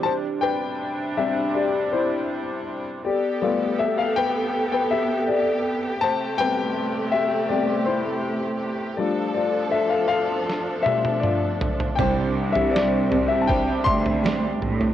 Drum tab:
SD |----------------|----------------|----------------|--------o-------|
T1 |----------------|----------------|----------------|----------oo----|
T2 |----------------|----------------|----------------|------------o---|
FT |----------------|----------------|----------------|--------------oo|
BD |----------------|----------------|----------------|----------------|

SD |----o-------o---|
T1 |----------------|
T2 |----------------|
FT |o--o--o-o--o--oo|
BD |o-------o-o-----|